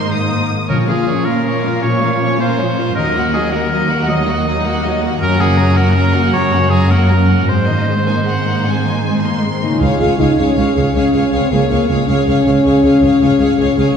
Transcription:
Already playing: cello section G#2, harp G#2 D#3 A#3 D#4 A#4, viola section A#3, violin section D#4 C6, oboe C5
0.12 harp A#4, violin section D#6
0.31 harp A#3
0.50 harp A#4
0.69 harp A#2, cello section A#2, timpani A#2, viola section F3, violin section C#4 C#5, oboe A#4
0.89 harp F3, viola section A#3, violin section F4 F5, oboe G#4
1.07 viola section F3, harp C#4, violin section C#4 C#5
1.25 viola section A#3, violin section F4 F5, oboe A#4, harp A#4
1.44 viola section F3, harp A#3, violin section C#4 C#5
1.63 viola section A#3, violin section F4 F5, harp A#4
1.81 harp A#2, viola section F3, violin section C#4 C#5, oboe C#5
2.01 harp F3, viola section A#3, violin section F4 F5
2.19 viola section F3, violin section C#4 C#5, harp C#4
2.38 viola section A#3, violin section F4 F5, harp A#4, oboe C5
2.58 viola section F3, harp A#3, violin section C#4 C#5
2.77 viola section A#3, violin section F4 F5, harp A#4
2.95 cello section D#2, harp D#3, viola section F#3, violin section D#4 D#5, oboe A#4
3.15 viola section A#3, harp D#4, violin section F#4 F#5
3.33 viola section F#3, violin section D#4 D#5, harp F#4, oboe G#4
3.52 viola section A#3, violin section F#4 F#5, oboe A#4, harp A#4
3.71 viola section F#3, harp A#3, violin section D#4 D#5
3.90 viola section A#3, violin section F#4 F#5, harp A#4
4.09 harp D#3, viola section F#3, violin section D#4 D#5, oboe D#5
4.28 viola section A#3, harp D#4, violin section F#4 F#5
4.46 viola section F#3, violin section D#4 D#5, harp F#4
4.64 viola section A#3, violin section F#4 F#5, harp A#4
4.82 viola section F#3, harp A#3, violin section D#4 D#5
5.02 viola section A#3, violin section F#4 F#5, harp A#4
5.19 cello section F#2, harp F#2, viola section F#3, violin section C#4 A#5, oboe A#4
5.38 harp C#3, viola section A#3, violin section F#4 F#5, oboe G#4
5.58 viola section F#3, violin section C#4 A#5, harp F#4
5.75 violin section F#4 F#5, oboe A#4, harp A#4
5.79 viola section A#3
5.95 viola section F#3, harp A#3, violin section C#4 A#5
6.14 viola section A#3, violin section F#4 F#5, harp A#4
6.33 harp F#2, viola section F#3, violin section C#4 A#5, oboe C#5
6.53 harp C#3, viola section A#3, violin section F#4 F#5
6.70 viola section F#3, violin section C#4 A#5, harp F#4, oboe G#4
6.90 viola section A#3, violin section F#4 F#5, oboe A#4
7.09 viola section F#3, harp A#3, violin section C#4 A#5
7.28 viola section A#3, violin section F#4 F#5, harp A#4
7.48 harp G#2, cello section G#2, viola section G#3, violin section C4 C5, oboe C5
7.67 harp D#3, viola section A#3, violin section D#4 D#5
7.86 viola section G#3, violin section C4 C5, harp D#4
8.05 viola section A#3, violin section D#4 G#5, harp A#4
8.25 viola section G#3, harp A#3, violin section C4 F#5
8.45 viola section A#3, harp A#4
8.49 violin section D#4
8.65 harp G#2, viola section G#3, violin section C4 G#5
8.84 harp D#3, viola section A#3, violin section D#4
9.03 viola section G#3, violin section C4, harp D#4
9.23 viola section A#3, violin section D#4 C6, harp A#4
9.42 viola section G#3, harp A#3, violin section C4
9.61 harp C#3 A#4, viola section A#3, french horn section D#4, violin section D#4
9.68 harp C#4
9.72 harp F4
9.77 french horn section F4, harp G#4, viola section G#4
9.81 cello section C#2, double bass section C#2, violin section C#5 F5
9.99 cello section C#2, double bass section C#2, viola section G#4, violin section C#5 F5
10.18 cello section C#2, double bass section C#2, french horn section D#4, viola section G#4, violin section C#5 F5
10.37 double bass section C#2, cello section C#2, french horn section C#4, viola section G#4, violin section C#5 F5
10.55 double bass section C#2, cello section C#2, viola section G#4, violin section C#5 F5
10.75 cello section C#2, double bass section C#2, viola section G#4, violin section C#5 F5
10.94 double bass section C#2, cello section C#2, french horn section C#4, viola section G#4, violin section C#5 F5
11.12 double bass section C#2, cello section C#2, viola section G#4, violin section C#5 F5
11.31 double bass section C#2, cello section C#2, french horn section C4, viola section G#4, violin section C#5 F5
11.50 double bass section C#2, cello section C#2, french horn section A#3, viola section G#4, violin section C#5 F5
11.69 double bass section C#2, cello section C#2, viola section G#4, violin section C#5 F5
11.88 cello section C#2, double bass section C#2, french horn section G#3, viola section G#4, violin section C#5 F5
12.07 cello section C#2, double bass section C#2, french horn section C#4, viola section G#4, violin section C#5 F5
12.28 double bass section C#2, cello section C#2, viola section G#4, violin section C#5 F5
12.46 cello section C#2, double bass section C#2, viola section G#4, violin section C#5 F5
12.64 cello section C#2, double bass section C#2, viola section G#4, violin section C#5 F5
12.83 double bass section C#2, cello section C#2, viola section G#4, violin section C#5 F5
13.02 double bass section C#2, cello section C#2, viola section G#4, violin section C#5 F5
13.21 cello section C#2, double bass section C#2, viola section G#4, violin section C#5 F5
13.39 double bass section C#2, cello section C#2, viola section G#4, violin section C#5 F5
13.58 double bass section C#2, cello section C#2, viola section G#4, violin section C#5 F5
13.76 double bass section C#2, cello section C#2, viola section G#4, violin section C#5 F5

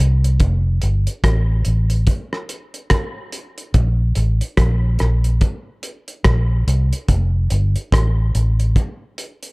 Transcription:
0.00 fingered electric bass C2, closed hi-hat
0.24 closed hi-hat
0.40 fingered electric bass F1, kick, closed hi-hat
0.82 fingered electric bass G1, closed hi-hat
1.07 closed hi-hat
1.24 fingered electric bass A1, kick, cross-stick, closed hi-hat
1.65 fingered electric bass A1, closed hi-hat
1.90 closed hi-hat
2.07 kick, closed hi-hat
2.33 cross-stick
2.49 closed hi-hat
2.74 closed hi-hat
2.90 kick, cross-stick, closed hi-hat
3.32 closed hi-hat
3.58 closed hi-hat
3.74 fingered electric bass A#1, kick, closed hi-hat
4.15 fingered electric bass A1, closed hi-hat
4.41 closed hi-hat
4.57 fingered electric bass A#1, kick, cross-stick, closed hi-hat
4.99 fingered electric bass A#1, cross-stick, closed hi-hat
5.24 closed hi-hat
5.41 kick, closed hi-hat
5.83 closed hi-hat
6.08 closed hi-hat
6.24 fingered electric bass A#1, kick, cross-stick, closed hi-hat
6.67 fingered electric bass C2, closed hi-hat
6.93 closed hi-hat
7.08 fingered electric bass F1, kick, closed hi-hat
7.50 fingered electric bass G1, closed hi-hat
7.76 closed hi-hat
7.92 fingered electric bass A1, kick, cross-stick, closed hi-hat
8.35 fingered electric bass A1, closed hi-hat
8.60 closed hi-hat
8.76 kick, closed hi-hat
9.18 closed hi-hat
9.43 closed hi-hat

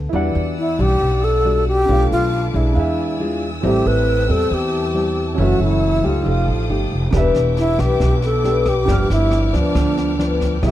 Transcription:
Already playing: nylon-string guitar D3, grand piano A5
0.09 upright bass E2, nylon-string guitar E3, grand piano E4, string section D5 F#5
0.13 nylon-string guitar G3 D4 F#4, grand piano D5 F#5, string section E6
0.35 upright bass E2
0.58 alto flute E4
0.79 upright bass B1, nylon-string guitar G3 D4, alto flute G4
1.00 upright bass B1, nylon-string guitar B2
1.24 alto flute A4
1.45 nylon-string guitar G3 D4 F#4
1.68 alto flute G4
1.85 upright bass B1, nylon-string guitar B2 A3 D4, grand piano D4 A4, string section B4 F5 A5 D6
1.89 nylon-string guitar F4, grand piano B4 F5
2.11 upright bass B1, alto flute F4
2.54 upright bass B1, nylon-string guitar G#3 D4, alto flute E4
2.73 upright bass E2, nylon-string guitar E3, grand piano D4 F5, string section D5 G#5 E6
2.77 grand piano G#4 E5
3.20 nylon-string guitar G#3 D4 F4
3.61 upright bass A1, nylon-string guitar A2 G3 C4 E4, grand piano C4 G4 A4, string section C4 G5 A5
3.66 alto flute G4, grand piano E5
3.86 upright bass A1, alto flute B4
4.28 upright bass E2, nylon-string guitar G3 C4 E4, alto flute A4
4.50 upright bass E2, nylon-string guitar E3, alto flute G4
4.94 nylon-string guitar G3 C4 E4
5.34 upright bass F#1, grand piano C#4 F#4, string section C#5 F#5 E6
5.38 nylon-string guitar F#2 E3 A3 C#4, alto flute F#4, grand piano A4 E5
5.60 upright bass F#1, alto flute E4
6.03 upright bass C#2, nylon-string guitar A3 D#4 G4, alto flute F4
6.23 upright bass F1, nylon-string guitar F3, grand piano D#4 G4 A4, string section A4 F5 G5 D#6
6.28 grand piano F5
6.48 upright bass A1
6.70 upright bass G1, nylon-string guitar A3 D#4 G4
6.91 upright bass F1
7.11 upright bass E1, nylon-string guitar E3 B3 D4 G4, string section B3 E5 D6, grand piano D4 G4 B4, kick, cross-stick, snare
7.17 grand piano E5
7.34 upright bass E1, snare
7.57 alto flute E4, snare
7.78 upright bass B1, nylon-string guitar B3 D4 G4, alto flute G4, kick, cross-stick, snare
8.00 upright bass B1, nylon-string guitar B2, kick, snare
8.22 alto flute A4, snare
8.44 nylon-string guitar B3 D4 G4, snare
8.66 alto flute G4, kick, cross-stick, snare
8.85 upright bass G1, nylon-string guitar G2 F3 B3 D4, grand piano D4 G4, string section F6, kick, snare
8.89 grand piano B4 F6
9.10 upright bass G1, alto flute E4, snare
9.31 cross-stick, snare
9.53 upright bass D2, nylon-string guitar F3 B3 D4, kick, snare
9.57 alto flute D4
9.75 upright bass D2, nylon-string guitar D3, kick, cross-stick, snare
9.97 snare
10.19 nylon-string guitar F3 B3 D4, snare
10.41 kick, snare
10.62 upright bass C2, nylon-string guitar C3 G3 B3 E4, grand piano G4 B4 E5, alto flute G4, string section E5 E6, kick, cross-stick, snare

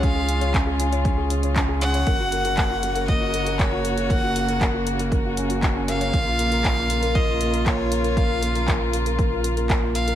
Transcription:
Already playing: sub bass C#2, string quartet C#3 G#3 F4, grand piano C#4 G#4 C#5
0.03 grand piano C#4, violin F5, kick, closed hi-hat
0.16 grand piano G#4
0.28 grand piano C#4, closed hi-hat
0.41 grand piano C#5, closed hi-hat
0.54 grand piano C#4, kick, clap, closed hi-hat
0.67 grand piano G#4
0.80 grand piano C#4, closed hi-hat
0.92 grand piano C#5, closed hi-hat
1.05 grand piano C#4, kick, closed hi-hat
1.18 grand piano G#4
1.30 grand piano C#4, closed hi-hat
1.43 grand piano C#5, closed hi-hat
1.56 grand piano C#4, kick, clap, closed hi-hat
1.69 grand piano G#4
1.81 grand piano C#4, violin F#5, closed hi-hat
1.94 grand piano C#5, closed hi-hat
2.07 sub bass F#1, string quartet A#3 F#4, grand piano A#3, kick, closed hi-hat
2.20 grand piano F#4
2.32 grand piano A#3, closed hi-hat
2.45 grand piano A#4, closed hi-hat
2.57 grand piano A#3, kick, clap, closed hi-hat
2.70 grand piano F#4
2.83 grand piano A#3, closed hi-hat
2.96 grand piano A#4, closed hi-hat
3.08 grand piano A#3, violin D#5, kick, closed hi-hat
3.21 grand piano F#4
3.34 grand piano A#3, closed hi-hat
3.46 grand piano A#4, closed hi-hat
3.59 grand piano A#3, violin C#5, kick, clap, closed hi-hat
3.72 grand piano F#4
3.85 grand piano A#3, closed hi-hat
3.98 grand piano A#4, closed hi-hat
4.10 grand piano A#3, violin F#5, kick, closed hi-hat
4.23 grand piano F#4
4.36 grand piano A#3, closed hi-hat
4.48 grand piano A#4, closed hi-hat
4.61 grand piano A#3, kick, clap, closed hi-hat
4.74 grand piano F#4
4.87 grand piano A#3, closed hi-hat
4.99 grand piano A#4, closed hi-hat
5.12 grand piano A#3, kick, closed hi-hat
5.25 grand piano F#4
5.37 grand piano C#4, closed hi-hat
5.50 grand piano F#4, closed hi-hat
5.62 grand piano F#4, kick, clap, closed hi-hat
5.75 grand piano C#4
5.88 grand piano A#3, violin F5, closed hi-hat
6.01 grand piano C#5, closed hi-hat
6.13 sub bass A#1, grand piano A#3, string quartet F4, kick, closed hi-hat
6.26 grand piano F4
6.39 grand piano A#3, closed hi-hat
6.51 grand piano A#4, closed hi-hat
6.64 grand piano A#3, kick, clap, closed hi-hat
6.77 grand piano F4
6.90 grand piano A#3, closed hi-hat
7.02 grand piano A#4, closed hi-hat
7.15 grand piano A#3, violin D#5, kick, closed hi-hat
7.28 grand piano F4
7.40 grand piano A#3, closed hi-hat
7.53 grand piano A#4, closed hi-hat
7.65 grand piano A#3, violin C#5, kick, clap, closed hi-hat
7.78 grand piano F4
7.91 grand piano A#3, closed hi-hat
8.04 grand piano A#4, closed hi-hat
8.17 grand piano A#3, violin F5, kick, closed hi-hat
8.30 grand piano F4
8.43 grand piano A#3, closed hi-hat
8.55 grand piano A#4, closed hi-hat
8.68 grand piano A#3, kick, clap, closed hi-hat
8.81 grand piano F4
8.93 grand piano A#3, closed hi-hat
9.06 grand piano A#4, closed hi-hat
9.18 grand piano A#3, kick, closed hi-hat
9.31 grand piano F4
9.44 grand piano A#3, closed hi-hat
9.57 grand piano A#4, closed hi-hat
9.69 grand piano A#3, kick, clap, closed hi-hat
9.82 grand piano F4
9.95 grand piano A#3, violin F5, closed hi-hat
10.08 grand piano A#4, closed hi-hat

